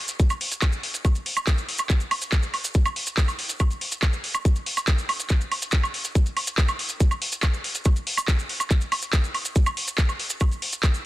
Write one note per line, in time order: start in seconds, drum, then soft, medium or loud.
0.08 closed hi-hat medium
0.08 maracas medium
0.19 kick loud
0.19 closed hi-hat medium
0.19 maracas medium
0.30 closed hi-hat soft
0.30 high woodblock soft
0.30 maracas soft
0.41 open hi-hat loud
0.52 closed hi-hat medium
0.52 maracas medium
0.62 kick loud
0.62 clap loud
0.62 closed hi-hat medium
0.62 high woodblock medium
0.62 maracas medium
0.73 closed hi-hat soft
0.73 maracas soft
0.83 open hi-hat medium
0.94 closed hi-hat medium
0.94 maracas medium
1.05 kick loud
1.05 closed hi-hat medium
1.05 high woodblock soft
1.05 maracas medium
1.15 closed hi-hat soft
1.15 maracas soft
1.26 open hi-hat loud
1.37 closed hi-hat medium
1.37 high woodblock medium
1.37 maracas medium
1.47 kick loud
1.47 clap loud
1.47 closed hi-hat medium
1.47 maracas medium
1.58 closed hi-hat soft
1.58 maracas soft
1.69 open hi-hat medium
1.78 closed hi-hat medium
1.78 high woodblock soft
1.78 maracas medium
1.90 kick loud
1.90 clap medium
1.90 closed hi-hat medium
1.90 maracas medium
2.00 closed hi-hat soft
2.00 maracas soft
2.11 open hi-hat loud
2.11 high woodblock medium
2.22 closed hi-hat medium
2.22 maracas medium
2.32 kick loud
2.32 clap loud
2.32 closed hi-hat medium
2.32 maracas medium
2.43 closed hi-hat soft
2.43 maracas soft
2.54 open hi-hat medium
2.54 high woodblock soft
2.64 closed hi-hat medium
2.64 maracas medium
2.74 kick loud
2.74 closed hi-hat medium
2.74 maracas medium
2.86 closed hi-hat soft
2.86 high woodblock medium
2.86 maracas soft
2.96 open hi-hat loud
3.07 closed hi-hat medium
3.07 maracas medium
3.17 kick loud
3.17 clap loud
3.17 closed hi-hat medium
3.17 maracas medium
3.28 closed hi-hat soft
3.28 high woodblock soft
3.28 maracas soft
3.39 open hi-hat medium
3.49 closed hi-hat medium
3.49 maracas medium
3.60 kick loud
3.60 closed hi-hat medium
3.60 high woodblock medium
3.60 maracas medium
3.71 closed hi-hat soft
3.71 maracas soft
3.81 open hi-hat loud
3.92 closed hi-hat medium
3.92 maracas medium
4.03 kick loud
4.03 clap loud
4.03 closed hi-hat medium
4.03 high woodblock soft
4.03 maracas medium
4.13 closed hi-hat soft
4.13 maracas soft
4.24 open hi-hat medium
4.34 closed hi-hat medium
4.34 high woodblock medium
4.34 maracas medium
4.45 kick loud
4.45 closed hi-hat medium
4.45 maracas medium
4.56 closed hi-hat soft
4.56 maracas soft
4.66 open hi-hat loud
4.77 closed hi-hat medium
4.77 high woodblock soft
4.77 maracas medium
4.87 kick loud
4.87 clap loud
4.87 closed hi-hat medium
4.87 maracas medium
4.98 closed hi-hat soft
4.98 maracas soft
5.09 open hi-hat medium
5.09 high woodblock medium
5.20 closed hi-hat medium
5.20 maracas medium
5.29 kick loud
5.29 clap medium
5.29 closed hi-hat medium
5.29 maracas medium
5.41 closed hi-hat soft
5.41 maracas soft
5.52 open hi-hat loud
5.52 high woodblock soft
5.62 closed hi-hat medium
5.62 maracas medium
5.72 kick loud
5.72 clap loud
5.72 closed hi-hat medium
5.72 maracas medium
5.83 closed hi-hat soft
5.83 high woodblock medium
5.83 maracas soft
5.94 open hi-hat medium
6.04 closed hi-hat medium
6.04 maracas medium
6.15 kick loud
6.15 closed hi-hat medium
6.15 maracas medium
6.26 closed hi-hat soft
6.26 maracas soft
6.37 open hi-hat loud
6.37 high woodblock soft
6.47 closed hi-hat medium
6.47 maracas medium
6.58 kick loud
6.58 clap loud
6.58 closed hi-hat medium
6.58 maracas medium
6.68 closed hi-hat soft
6.68 high woodblock medium
6.68 maracas soft
6.79 open hi-hat medium
6.89 closed hi-hat medium
6.89 maracas medium
7.00 kick loud
7.00 closed hi-hat medium
7.00 maracas medium
7.11 closed hi-hat soft
7.11 high woodblock soft
7.11 maracas soft
7.22 open hi-hat loud
7.32 closed hi-hat medium
7.32 maracas medium
7.43 kick loud
7.43 clap loud
7.43 closed hi-hat medium
7.43 high woodblock medium
7.43 maracas medium
7.54 closed hi-hat soft
7.54 maracas soft
7.64 open hi-hat medium
7.75 closed hi-hat medium
7.75 maracas medium
7.85 kick loud
7.85 closed hi-hat medium
7.85 high woodblock soft
7.85 maracas medium
7.96 closed hi-hat soft
7.96 maracas soft
8.07 open hi-hat loud
8.17 closed hi-hat medium
8.17 high woodblock medium
8.17 maracas medium
8.28 kick loud
8.28 clap loud
8.28 closed hi-hat medium
8.28 maracas medium
8.39 closed hi-hat soft
8.39 maracas soft
8.49 open hi-hat medium
8.60 closed hi-hat medium
8.60 high woodblock soft
8.60 maracas medium
8.71 kick loud
8.71 clap medium
8.71 closed hi-hat medium
8.71 maracas medium
8.81 closed hi-hat soft
8.81 maracas soft
8.92 open hi-hat loud
8.92 high woodblock medium
9.02 closed hi-hat medium
9.02 maracas medium
9.13 kick loud
9.13 clap loud
9.13 closed hi-hat medium
9.13 maracas medium
9.24 closed hi-hat soft
9.24 maracas soft
9.34 open hi-hat medium
9.34 high woodblock soft
9.45 closed hi-hat medium
9.45 maracas medium
9.56 kick loud
9.56 closed hi-hat medium
9.56 maracas medium
9.66 closed hi-hat soft
9.66 high woodblock medium
9.66 maracas soft
9.77 open hi-hat loud
9.88 closed hi-hat medium
9.88 maracas medium
9.98 kick loud
9.98 clap loud
9.98 closed hi-hat medium
9.98 maracas medium
10.09 closed hi-hat soft
10.09 high woodblock soft
10.09 maracas soft
10.20 open hi-hat medium
10.30 closed hi-hat medium
10.30 maracas medium
10.40 kick loud
10.40 closed hi-hat medium
10.40 high woodblock medium
10.40 maracas medium
10.51 closed hi-hat soft
10.51 maracas soft
10.62 open hi-hat loud
10.73 closed hi-hat medium
10.73 maracas medium
10.83 kick loud
10.83 clap loud
10.83 closed hi-hat medium
10.83 high woodblock soft
10.83 maracas medium
10.94 closed hi-hat soft
10.94 maracas soft